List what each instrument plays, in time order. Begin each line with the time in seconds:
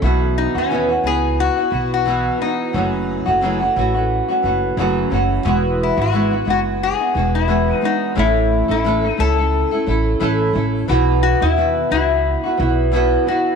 0.02 upright bass B1, nylon-string guitar B2 E3 B3 E4 F#4
0.38 resonator guitar played with a steel bar D#4
0.55 upright bass D#2, nylon-string guitar B3 E4 F#4, resonator guitar played with a steel bar C#4
0.70 nylon-string guitar B2 E3 B3 E4 F#4
0.89 nylon-string guitar B3 E4 F#4
1.04 upright bass C#2, nylon-string guitar E3 B3 E4 F#4, resonator guitar played with a steel bar G#4
1.40 resonator guitar played with a steel bar F#4
1.56 nylon-string guitar B3 E4 F#4
1.71 upright bass B1, nylon-string guitar E3 B3 E4 F#4
1.94 resonator guitar played with a steel bar F#4
2.05 nylon-string guitar B2 E3 B3 E4 F#4
2.39 nylon-string guitar E3 B3 F#4, resonator guitar played with a steel bar D#4
2.73 upright bass F#1, nylon-string guitar F#2 C#3 E3 A3 C#4 F#4
3.26 upright bass F#1, nylon-string guitar E3 A3 C#4 F#4
3.41 nylon-string guitar F#2 C#3 E3 A3 C#4 F#4
3.60 nylon-string guitar E3 A3 C#4 F#4
3.76 upright bass A1, nylon-string guitar E3 A3 C#4 F#4
3.94 nylon-string guitar E3 A3 C#4 F#4
4.28 nylon-string guitar E3 A3 C#4 F#4
4.43 upright bass F#1, nylon-string guitar E3 A3 C#4 F#4
4.77 upright bass F#1, nylon-string guitar F#2 C#3 E3 A3 C#4 F#4
5.10 upright bass F#1, nylon-string guitar E3 A3 C#4 F#4
5.45 upright bass E1, nylon-string guitar E3 G#3 B3 E4 F#4
5.83 resonator guitar played with a steel bar E4
5.97 upright bass G#1, nylon-string guitar B3 E4 F#4
6.02 resonator guitar played with a steel bar F#4
6.12 nylon-string guitar E3 G#3 B3 E4 F#4
6.31 nylon-string guitar B3 E4 F#4
6.45 upright bass F#1, nylon-string guitar G#3 B3 E4 F#4
6.50 resonator guitar played with a steel bar F#4
6.83 resonator guitar played with a steel bar G#4
6.99 nylon-string guitar B3 E4 F#4
7.14 upright bass E1, nylon-string guitar G#3 B3 E4 F#4
7.35 resonator guitar played with a steel bar E4
7.48 nylon-string guitar E3 G#3 B3 E4 F#4
7.72 resonator guitar played with a steel bar D#4
7.81 nylon-string guitar G#3 B3 F#4
7.85 resonator guitar played with a steel bar D#4
8.15 upright bass A1, nylon-string guitar A2 E3 A3 C#4 E4 A4, resonator guitar played with a steel bar E4
8.68 upright bass A1, nylon-string guitar A3 C#4 E4 A4, resonator guitar played with a steel bar E4
8.84 nylon-string guitar A2 E3 A3 C#4 E4 A4
9.02 nylon-string guitar A3 C#4 E4 A4
9.08 resonator guitar played with a steel bar D#4
9.17 upright bass C#2, nylon-string guitar A3 C#4 E4 A4, resonator guitar played with a steel bar A4
9.37 nylon-string guitar A3 C#4 E4 A4
9.71 nylon-string guitar A3 C#4 E4 A4
9.86 upright bass A1, nylon-string guitar A3 C#4 E4 A4
10.20 upright bass A1, nylon-string guitar A2 E3 A3 C#4 E4 A4
10.53 upright bass A1, nylon-string guitar A3 C#4 E4 A4
10.88 upright bass B1, nylon-string guitar B2 E3 B3 E4 F#4
11.23 resonator guitar played with a steel bar F#4
11.40 upright bass D#2, nylon-string guitar B3 E4 F#4, resonator guitar played with a steel bar E4
11.56 nylon-string guitar B2 B3 E4 F#4
11.91 upright bass C#2, nylon-string guitar E3 B3 E4 F#4, resonator guitar played with a steel bar E4
12.43 nylon-string guitar B3 E4 F#4
12.57 upright bass B1, nylon-string guitar E3 B3 E4 F#4
12.92 nylon-string guitar B2 E3 B3 E4 F#4
13.27 nylon-string guitar E3 B3 E4 F#4, resonator guitar played with a steel bar F#4